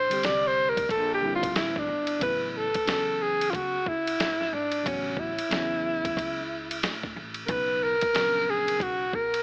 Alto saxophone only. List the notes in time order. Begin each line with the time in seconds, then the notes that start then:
Already playing: C5
0.25 D5
0.48 C5
0.70 A#4
0.91 A4
1.14 G4
1.35 F4
1.57 E4
1.79 D4
2.23 B4
2.51 B4
2.57 A4
2.90 A4
3.22 G#4
3.51 F4
3.56 F#4
3.88 E4
4.54 D4
4.87 C#4
5.20 E4
7.46 A#4
7.51 B4
7.84 A#4
8.50 G#4
8.83 F#4
9.15 A#4